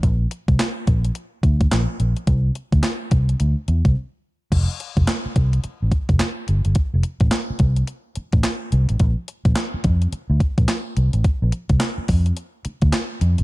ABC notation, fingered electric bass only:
X:1
M:4/4
L:1/16
Q:"Swing 16ths" 1/4=107
K:F
V:1 name="Fingered electric bass" clef=bass
B,,,2 z C,, z2 B,,,2 z2 D,,2 B,,, z B,,, z | C,,2 z D,, z2 C,,2 D,, z E,, C,, z4 | F,,, z2 F,,, z2 C,,2 z A,,, z F,,, z2 G,,, G,,, | z F,,, z A,,, z2 C,,2 z3 A,,, z2 C,, A,,, |
B,,, z2 B,,, z2 F,,2 z D,, z B,,, z2 C,, A,,, | z B,,, z C,, z2 F,,2 z3 D,, z2 F,, G,,, |]